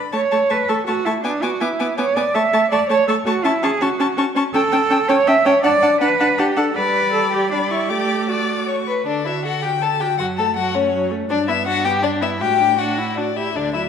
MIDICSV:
0, 0, Header, 1, 5, 480
1, 0, Start_track
1, 0, Key_signature, 3, "major"
1, 0, Tempo, 368324
1, 171, Time_signature, 3, 2, 24, 8
1, 5919, Key_signature, 2, "major"
1, 8807, Tempo, 384615
1, 11687, Tempo, 373832
1, 17879, End_track
2, 0, Start_track
2, 0, Title_t, "Violin"
2, 0, Program_c, 0, 40
2, 0, Note_on_c, 0, 83, 42
2, 164, Note_off_c, 0, 83, 0
2, 170, Note_on_c, 0, 85, 48
2, 268, Note_off_c, 0, 85, 0
2, 416, Note_on_c, 0, 85, 45
2, 513, Note_off_c, 0, 85, 0
2, 646, Note_on_c, 0, 85, 46
2, 745, Note_off_c, 0, 85, 0
2, 897, Note_on_c, 0, 85, 42
2, 993, Note_off_c, 0, 85, 0
2, 1131, Note_on_c, 0, 85, 48
2, 1229, Note_off_c, 0, 85, 0
2, 1380, Note_on_c, 0, 85, 47
2, 1476, Note_off_c, 0, 85, 0
2, 1626, Note_on_c, 0, 86, 50
2, 1721, Note_off_c, 0, 86, 0
2, 1863, Note_on_c, 0, 86, 47
2, 1959, Note_off_c, 0, 86, 0
2, 2102, Note_on_c, 0, 86, 50
2, 2198, Note_off_c, 0, 86, 0
2, 2345, Note_on_c, 0, 86, 48
2, 2440, Note_off_c, 0, 86, 0
2, 2579, Note_on_c, 0, 86, 53
2, 2675, Note_off_c, 0, 86, 0
2, 2824, Note_on_c, 0, 86, 51
2, 2918, Note_off_c, 0, 86, 0
2, 3063, Note_on_c, 0, 85, 54
2, 3157, Note_off_c, 0, 85, 0
2, 3299, Note_on_c, 0, 85, 51
2, 3394, Note_off_c, 0, 85, 0
2, 3541, Note_on_c, 0, 85, 52
2, 3635, Note_off_c, 0, 85, 0
2, 3774, Note_on_c, 0, 85, 53
2, 3869, Note_off_c, 0, 85, 0
2, 4027, Note_on_c, 0, 85, 60
2, 4120, Note_off_c, 0, 85, 0
2, 4259, Note_on_c, 0, 85, 62
2, 4353, Note_off_c, 0, 85, 0
2, 4490, Note_on_c, 0, 85, 64
2, 4586, Note_off_c, 0, 85, 0
2, 4734, Note_on_c, 0, 85, 58
2, 4829, Note_off_c, 0, 85, 0
2, 4978, Note_on_c, 0, 85, 56
2, 5071, Note_off_c, 0, 85, 0
2, 5216, Note_on_c, 0, 85, 60
2, 5309, Note_off_c, 0, 85, 0
2, 5446, Note_on_c, 0, 85, 62
2, 5541, Note_off_c, 0, 85, 0
2, 5682, Note_on_c, 0, 85, 66
2, 5777, Note_off_c, 0, 85, 0
2, 5914, Note_on_c, 0, 81, 66
2, 6010, Note_off_c, 0, 81, 0
2, 6146, Note_on_c, 0, 81, 60
2, 6244, Note_off_c, 0, 81, 0
2, 6391, Note_on_c, 0, 81, 63
2, 6487, Note_off_c, 0, 81, 0
2, 6630, Note_on_c, 0, 81, 58
2, 6726, Note_off_c, 0, 81, 0
2, 6867, Note_on_c, 0, 81, 58
2, 6964, Note_off_c, 0, 81, 0
2, 7111, Note_on_c, 0, 81, 65
2, 7208, Note_off_c, 0, 81, 0
2, 7353, Note_on_c, 0, 81, 63
2, 7450, Note_off_c, 0, 81, 0
2, 7588, Note_on_c, 0, 81, 52
2, 7687, Note_off_c, 0, 81, 0
2, 7838, Note_on_c, 0, 81, 59
2, 7936, Note_off_c, 0, 81, 0
2, 8076, Note_on_c, 0, 81, 55
2, 8174, Note_off_c, 0, 81, 0
2, 8312, Note_on_c, 0, 81, 54
2, 8411, Note_off_c, 0, 81, 0
2, 8553, Note_on_c, 0, 81, 57
2, 8653, Note_off_c, 0, 81, 0
2, 8805, Note_on_c, 0, 83, 61
2, 9695, Note_off_c, 0, 83, 0
2, 9752, Note_on_c, 0, 83, 52
2, 9992, Note_on_c, 0, 85, 49
2, 10011, Note_off_c, 0, 83, 0
2, 10223, Note_on_c, 0, 86, 51
2, 10242, Note_off_c, 0, 85, 0
2, 10702, Note_off_c, 0, 86, 0
2, 10710, Note_on_c, 0, 86, 47
2, 11215, Note_on_c, 0, 85, 48
2, 11234, Note_off_c, 0, 86, 0
2, 11454, Note_off_c, 0, 85, 0
2, 11682, Note_on_c, 0, 74, 54
2, 11942, Note_on_c, 0, 76, 55
2, 11961, Note_off_c, 0, 74, 0
2, 12173, Note_off_c, 0, 76, 0
2, 12181, Note_on_c, 0, 78, 53
2, 12417, Note_on_c, 0, 79, 57
2, 12436, Note_off_c, 0, 78, 0
2, 12657, Note_on_c, 0, 81, 59
2, 12677, Note_off_c, 0, 79, 0
2, 12894, Note_on_c, 0, 79, 63
2, 12913, Note_off_c, 0, 81, 0
2, 13113, Note_off_c, 0, 79, 0
2, 13121, Note_on_c, 0, 78, 64
2, 13219, Note_off_c, 0, 78, 0
2, 13368, Note_on_c, 0, 81, 63
2, 13598, Note_off_c, 0, 81, 0
2, 13605, Note_on_c, 0, 78, 62
2, 13847, Note_on_c, 0, 73, 55
2, 13867, Note_off_c, 0, 78, 0
2, 14320, Note_off_c, 0, 73, 0
2, 14559, Note_on_c, 0, 74, 74
2, 14776, Note_off_c, 0, 74, 0
2, 14795, Note_on_c, 0, 76, 69
2, 15023, Note_off_c, 0, 76, 0
2, 15029, Note_on_c, 0, 78, 77
2, 15252, Note_off_c, 0, 78, 0
2, 15260, Note_on_c, 0, 79, 72
2, 15355, Note_off_c, 0, 79, 0
2, 15493, Note_on_c, 0, 74, 65
2, 15590, Note_off_c, 0, 74, 0
2, 15741, Note_on_c, 0, 76, 61
2, 15837, Note_off_c, 0, 76, 0
2, 15976, Note_on_c, 0, 79, 68
2, 16461, Note_on_c, 0, 78, 53
2, 16480, Note_off_c, 0, 79, 0
2, 16952, Note_off_c, 0, 78, 0
2, 16960, Note_on_c, 0, 74, 51
2, 17205, Note_on_c, 0, 76, 55
2, 17224, Note_off_c, 0, 74, 0
2, 17458, Note_on_c, 0, 74, 60
2, 17478, Note_off_c, 0, 76, 0
2, 17681, Note_off_c, 0, 74, 0
2, 17689, Note_on_c, 0, 76, 53
2, 17879, Note_off_c, 0, 76, 0
2, 17879, End_track
3, 0, Start_track
3, 0, Title_t, "Violin"
3, 0, Program_c, 1, 40
3, 163, Note_on_c, 1, 81, 52
3, 263, Note_off_c, 1, 81, 0
3, 411, Note_on_c, 1, 81, 42
3, 509, Note_off_c, 1, 81, 0
3, 650, Note_on_c, 1, 81, 44
3, 748, Note_off_c, 1, 81, 0
3, 894, Note_on_c, 1, 81, 49
3, 991, Note_off_c, 1, 81, 0
3, 1142, Note_on_c, 1, 81, 48
3, 1238, Note_off_c, 1, 81, 0
3, 1378, Note_on_c, 1, 81, 49
3, 1474, Note_off_c, 1, 81, 0
3, 1612, Note_on_c, 1, 80, 56
3, 1710, Note_off_c, 1, 80, 0
3, 1855, Note_on_c, 1, 80, 46
3, 1952, Note_off_c, 1, 80, 0
3, 2092, Note_on_c, 1, 80, 49
3, 2190, Note_off_c, 1, 80, 0
3, 2340, Note_on_c, 1, 80, 46
3, 2436, Note_off_c, 1, 80, 0
3, 2575, Note_on_c, 1, 80, 50
3, 2671, Note_off_c, 1, 80, 0
3, 2822, Note_on_c, 1, 80, 45
3, 2916, Note_off_c, 1, 80, 0
3, 3058, Note_on_c, 1, 81, 67
3, 3153, Note_off_c, 1, 81, 0
3, 3301, Note_on_c, 1, 81, 54
3, 3395, Note_off_c, 1, 81, 0
3, 3546, Note_on_c, 1, 81, 56
3, 3639, Note_off_c, 1, 81, 0
3, 3788, Note_on_c, 1, 81, 53
3, 3881, Note_off_c, 1, 81, 0
3, 4018, Note_on_c, 1, 81, 57
3, 4112, Note_off_c, 1, 81, 0
3, 4257, Note_on_c, 1, 81, 56
3, 4351, Note_off_c, 1, 81, 0
3, 4490, Note_on_c, 1, 81, 69
3, 4586, Note_off_c, 1, 81, 0
3, 4731, Note_on_c, 1, 81, 61
3, 4826, Note_off_c, 1, 81, 0
3, 4965, Note_on_c, 1, 81, 62
3, 5061, Note_off_c, 1, 81, 0
3, 5212, Note_on_c, 1, 81, 54
3, 5306, Note_off_c, 1, 81, 0
3, 5449, Note_on_c, 1, 81, 55
3, 5543, Note_off_c, 1, 81, 0
3, 5688, Note_on_c, 1, 81, 53
3, 5782, Note_off_c, 1, 81, 0
3, 5923, Note_on_c, 1, 79, 68
3, 6017, Note_off_c, 1, 79, 0
3, 6156, Note_on_c, 1, 79, 58
3, 6251, Note_off_c, 1, 79, 0
3, 6392, Note_on_c, 1, 79, 62
3, 6488, Note_off_c, 1, 79, 0
3, 6635, Note_on_c, 1, 79, 59
3, 6730, Note_off_c, 1, 79, 0
3, 6870, Note_on_c, 1, 79, 60
3, 6966, Note_off_c, 1, 79, 0
3, 7111, Note_on_c, 1, 79, 60
3, 7208, Note_off_c, 1, 79, 0
3, 7344, Note_on_c, 1, 78, 66
3, 7443, Note_off_c, 1, 78, 0
3, 7590, Note_on_c, 1, 78, 55
3, 7688, Note_off_c, 1, 78, 0
3, 7832, Note_on_c, 1, 78, 59
3, 7931, Note_off_c, 1, 78, 0
3, 8085, Note_on_c, 1, 78, 55
3, 8181, Note_off_c, 1, 78, 0
3, 8321, Note_on_c, 1, 78, 57
3, 8419, Note_off_c, 1, 78, 0
3, 8558, Note_on_c, 1, 78, 54
3, 8657, Note_off_c, 1, 78, 0
3, 8812, Note_on_c, 1, 74, 67
3, 9699, Note_off_c, 1, 74, 0
3, 9746, Note_on_c, 1, 74, 51
3, 10221, Note_off_c, 1, 74, 0
3, 10233, Note_on_c, 1, 74, 56
3, 10710, Note_off_c, 1, 74, 0
3, 10724, Note_on_c, 1, 74, 61
3, 11174, Note_off_c, 1, 74, 0
3, 11201, Note_on_c, 1, 73, 57
3, 11299, Note_off_c, 1, 73, 0
3, 11454, Note_on_c, 1, 71, 47
3, 11681, Note_off_c, 1, 71, 0
3, 11688, Note_on_c, 1, 62, 56
3, 11914, Note_off_c, 1, 62, 0
3, 11922, Note_on_c, 1, 64, 43
3, 12021, Note_off_c, 1, 64, 0
3, 12167, Note_on_c, 1, 66, 50
3, 12396, Note_off_c, 1, 66, 0
3, 12404, Note_on_c, 1, 67, 47
3, 12503, Note_off_c, 1, 67, 0
3, 12651, Note_on_c, 1, 69, 50
3, 12748, Note_off_c, 1, 69, 0
3, 12890, Note_on_c, 1, 67, 48
3, 12987, Note_off_c, 1, 67, 0
3, 13137, Note_on_c, 1, 66, 64
3, 13233, Note_off_c, 1, 66, 0
3, 13383, Note_on_c, 1, 69, 51
3, 13476, Note_off_c, 1, 69, 0
3, 13618, Note_on_c, 1, 66, 53
3, 13851, Note_on_c, 1, 61, 48
3, 13870, Note_off_c, 1, 66, 0
3, 14321, Note_off_c, 1, 61, 0
3, 14558, Note_on_c, 1, 62, 71
3, 14652, Note_off_c, 1, 62, 0
3, 14788, Note_on_c, 1, 64, 58
3, 14882, Note_off_c, 1, 64, 0
3, 15031, Note_on_c, 1, 66, 65
3, 15260, Note_on_c, 1, 67, 67
3, 15280, Note_off_c, 1, 66, 0
3, 15490, Note_on_c, 1, 62, 60
3, 15510, Note_off_c, 1, 67, 0
3, 15733, Note_on_c, 1, 64, 56
3, 15753, Note_off_c, 1, 62, 0
3, 15984, Note_on_c, 1, 67, 62
3, 16003, Note_off_c, 1, 64, 0
3, 16458, Note_off_c, 1, 67, 0
3, 16466, Note_on_c, 1, 66, 46
3, 16948, Note_off_c, 1, 66, 0
3, 16961, Note_on_c, 1, 62, 46
3, 17059, Note_off_c, 1, 62, 0
3, 17211, Note_on_c, 1, 64, 44
3, 17460, Note_on_c, 1, 62, 51
3, 17479, Note_off_c, 1, 64, 0
3, 17681, Note_off_c, 1, 62, 0
3, 17689, Note_on_c, 1, 64, 45
3, 17784, Note_off_c, 1, 64, 0
3, 17879, End_track
4, 0, Start_track
4, 0, Title_t, "Cello"
4, 0, Program_c, 2, 42
4, 177, Note_on_c, 2, 73, 70
4, 660, Note_on_c, 2, 71, 72
4, 680, Note_off_c, 2, 73, 0
4, 902, Note_on_c, 2, 69, 74
4, 921, Note_off_c, 2, 71, 0
4, 1129, Note_off_c, 2, 69, 0
4, 1137, Note_on_c, 2, 66, 76
4, 1373, Note_on_c, 2, 64, 62
4, 1392, Note_off_c, 2, 66, 0
4, 1606, Note_off_c, 2, 64, 0
4, 1613, Note_on_c, 2, 62, 69
4, 1857, Note_on_c, 2, 66, 68
4, 1877, Note_off_c, 2, 62, 0
4, 2099, Note_on_c, 2, 64, 61
4, 2118, Note_off_c, 2, 66, 0
4, 2580, Note_off_c, 2, 64, 0
4, 2586, Note_on_c, 2, 73, 84
4, 2822, Note_on_c, 2, 74, 73
4, 2842, Note_off_c, 2, 73, 0
4, 3049, Note_on_c, 2, 76, 83
4, 3069, Note_off_c, 2, 74, 0
4, 3526, Note_off_c, 2, 76, 0
4, 3534, Note_on_c, 2, 74, 78
4, 3768, Note_off_c, 2, 74, 0
4, 3777, Note_on_c, 2, 73, 89
4, 4004, Note_off_c, 2, 73, 0
4, 4012, Note_on_c, 2, 69, 83
4, 4107, Note_off_c, 2, 69, 0
4, 4255, Note_on_c, 2, 66, 81
4, 4494, Note_on_c, 2, 64, 78
4, 4513, Note_off_c, 2, 66, 0
4, 4732, Note_on_c, 2, 68, 84
4, 4751, Note_off_c, 2, 64, 0
4, 4974, Note_on_c, 2, 66, 71
4, 4993, Note_off_c, 2, 68, 0
4, 5447, Note_off_c, 2, 66, 0
4, 5920, Note_on_c, 2, 69, 93
4, 6627, Note_on_c, 2, 73, 97
4, 6646, Note_off_c, 2, 69, 0
4, 6873, Note_on_c, 2, 76, 97
4, 6892, Note_off_c, 2, 73, 0
4, 7109, Note_on_c, 2, 73, 89
4, 7129, Note_off_c, 2, 76, 0
4, 7339, Note_off_c, 2, 73, 0
4, 7347, Note_on_c, 2, 74, 93
4, 7825, Note_off_c, 2, 74, 0
4, 7832, Note_on_c, 2, 71, 89
4, 8326, Note_on_c, 2, 67, 80
4, 8346, Note_off_c, 2, 71, 0
4, 8566, Note_on_c, 2, 69, 72
4, 8585, Note_off_c, 2, 67, 0
4, 8811, Note_on_c, 2, 71, 87
4, 8830, Note_off_c, 2, 69, 0
4, 9263, Note_off_c, 2, 71, 0
4, 9271, Note_on_c, 2, 69, 73
4, 9499, Note_off_c, 2, 69, 0
4, 9507, Note_on_c, 2, 67, 71
4, 9736, Note_off_c, 2, 67, 0
4, 9743, Note_on_c, 2, 62, 71
4, 9840, Note_off_c, 2, 62, 0
4, 9988, Note_on_c, 2, 64, 62
4, 10228, Note_on_c, 2, 67, 68
4, 10247, Note_off_c, 2, 64, 0
4, 10720, Note_on_c, 2, 66, 56
4, 10738, Note_off_c, 2, 67, 0
4, 11449, Note_off_c, 2, 66, 0
4, 11686, Note_on_c, 2, 50, 40
4, 13139, Note_on_c, 2, 42, 48
4, 13158, Note_off_c, 2, 50, 0
4, 14553, Note_off_c, 2, 42, 0
4, 14560, Note_on_c, 2, 43, 53
4, 15982, Note_on_c, 2, 45, 46
4, 16001, Note_off_c, 2, 43, 0
4, 17207, Note_off_c, 2, 45, 0
4, 17460, Note_on_c, 2, 38, 43
4, 17854, Note_off_c, 2, 38, 0
4, 17879, End_track
5, 0, Start_track
5, 0, Title_t, "Viola"
5, 0, Program_c, 3, 41
5, 166, Note_on_c, 3, 57, 48
5, 264, Note_off_c, 3, 57, 0
5, 414, Note_on_c, 3, 57, 51
5, 511, Note_off_c, 3, 57, 0
5, 658, Note_on_c, 3, 57, 51
5, 754, Note_off_c, 3, 57, 0
5, 896, Note_on_c, 3, 57, 50
5, 993, Note_off_c, 3, 57, 0
5, 1139, Note_on_c, 3, 57, 53
5, 1235, Note_off_c, 3, 57, 0
5, 1382, Note_on_c, 3, 57, 54
5, 1478, Note_off_c, 3, 57, 0
5, 1618, Note_on_c, 3, 59, 55
5, 1714, Note_off_c, 3, 59, 0
5, 1864, Note_on_c, 3, 59, 52
5, 1959, Note_off_c, 3, 59, 0
5, 2101, Note_on_c, 3, 59, 57
5, 2197, Note_off_c, 3, 59, 0
5, 2344, Note_on_c, 3, 59, 60
5, 2439, Note_off_c, 3, 59, 0
5, 2584, Note_on_c, 3, 59, 59
5, 2678, Note_off_c, 3, 59, 0
5, 2815, Note_on_c, 3, 59, 59
5, 2911, Note_off_c, 3, 59, 0
5, 3053, Note_on_c, 3, 57, 58
5, 3149, Note_off_c, 3, 57, 0
5, 3296, Note_on_c, 3, 57, 60
5, 3391, Note_off_c, 3, 57, 0
5, 3533, Note_on_c, 3, 57, 61
5, 3629, Note_off_c, 3, 57, 0
5, 3770, Note_on_c, 3, 57, 59
5, 3866, Note_off_c, 3, 57, 0
5, 4006, Note_on_c, 3, 57, 65
5, 4102, Note_off_c, 3, 57, 0
5, 4241, Note_on_c, 3, 57, 68
5, 4338, Note_off_c, 3, 57, 0
5, 4484, Note_on_c, 3, 61, 62
5, 4581, Note_off_c, 3, 61, 0
5, 4726, Note_on_c, 3, 61, 62
5, 4822, Note_off_c, 3, 61, 0
5, 4964, Note_on_c, 3, 61, 71
5, 5060, Note_off_c, 3, 61, 0
5, 5204, Note_on_c, 3, 61, 72
5, 5299, Note_off_c, 3, 61, 0
5, 5436, Note_on_c, 3, 61, 70
5, 5533, Note_off_c, 3, 61, 0
5, 5672, Note_on_c, 3, 61, 69
5, 5769, Note_off_c, 3, 61, 0
5, 5914, Note_on_c, 3, 61, 68
5, 6010, Note_off_c, 3, 61, 0
5, 6154, Note_on_c, 3, 61, 65
5, 6249, Note_off_c, 3, 61, 0
5, 6384, Note_on_c, 3, 61, 71
5, 6482, Note_off_c, 3, 61, 0
5, 6627, Note_on_c, 3, 61, 71
5, 6724, Note_off_c, 3, 61, 0
5, 6868, Note_on_c, 3, 61, 68
5, 6965, Note_off_c, 3, 61, 0
5, 7103, Note_on_c, 3, 61, 72
5, 7202, Note_off_c, 3, 61, 0
5, 7344, Note_on_c, 3, 62, 64
5, 7443, Note_off_c, 3, 62, 0
5, 7588, Note_on_c, 3, 62, 62
5, 7687, Note_off_c, 3, 62, 0
5, 7829, Note_on_c, 3, 62, 68
5, 7928, Note_off_c, 3, 62, 0
5, 8077, Note_on_c, 3, 62, 68
5, 8175, Note_off_c, 3, 62, 0
5, 8321, Note_on_c, 3, 62, 68
5, 8418, Note_off_c, 3, 62, 0
5, 8558, Note_on_c, 3, 62, 68
5, 8657, Note_off_c, 3, 62, 0
5, 8805, Note_on_c, 3, 55, 59
5, 10227, Note_on_c, 3, 57, 56
5, 10246, Note_off_c, 3, 55, 0
5, 11447, Note_off_c, 3, 57, 0
5, 11690, Note_on_c, 3, 69, 33
5, 11933, Note_on_c, 3, 66, 33
5, 11952, Note_off_c, 3, 69, 0
5, 12173, Note_on_c, 3, 69, 35
5, 12192, Note_off_c, 3, 66, 0
5, 12411, Note_on_c, 3, 66, 35
5, 12430, Note_off_c, 3, 69, 0
5, 12648, Note_off_c, 3, 66, 0
5, 12656, Note_on_c, 3, 69, 38
5, 12895, Note_on_c, 3, 66, 38
5, 12914, Note_off_c, 3, 69, 0
5, 13124, Note_off_c, 3, 66, 0
5, 13132, Note_on_c, 3, 54, 37
5, 13375, Note_on_c, 3, 57, 37
5, 13394, Note_off_c, 3, 54, 0
5, 13610, Note_on_c, 3, 54, 38
5, 13630, Note_off_c, 3, 57, 0
5, 13843, Note_on_c, 3, 57, 41
5, 13863, Note_off_c, 3, 54, 0
5, 14072, Note_off_c, 3, 57, 0
5, 14080, Note_on_c, 3, 54, 47
5, 14312, Note_on_c, 3, 57, 47
5, 14332, Note_off_c, 3, 54, 0
5, 14546, Note_off_c, 3, 57, 0
5, 14553, Note_on_c, 3, 62, 49
5, 14790, Note_on_c, 3, 59, 46
5, 14809, Note_off_c, 3, 62, 0
5, 15020, Note_on_c, 3, 62, 51
5, 15039, Note_off_c, 3, 59, 0
5, 15260, Note_on_c, 3, 59, 46
5, 15280, Note_off_c, 3, 62, 0
5, 15488, Note_off_c, 3, 59, 0
5, 15496, Note_on_c, 3, 62, 47
5, 15733, Note_on_c, 3, 59, 42
5, 15753, Note_off_c, 3, 62, 0
5, 15973, Note_off_c, 3, 59, 0
5, 15980, Note_on_c, 3, 66, 37
5, 16224, Note_on_c, 3, 62, 37
5, 16244, Note_off_c, 3, 66, 0
5, 16459, Note_off_c, 3, 62, 0
5, 16466, Note_on_c, 3, 62, 48
5, 16712, Note_on_c, 3, 64, 47
5, 16731, Note_off_c, 3, 62, 0
5, 16956, Note_on_c, 3, 66, 49
5, 16975, Note_off_c, 3, 64, 0
5, 17197, Note_off_c, 3, 66, 0
5, 17205, Note_on_c, 3, 67, 43
5, 17441, Note_off_c, 3, 67, 0
5, 17449, Note_on_c, 3, 50, 37
5, 17691, Note_on_c, 3, 54, 39
5, 17710, Note_off_c, 3, 50, 0
5, 17879, Note_off_c, 3, 54, 0
5, 17879, End_track
0, 0, End_of_file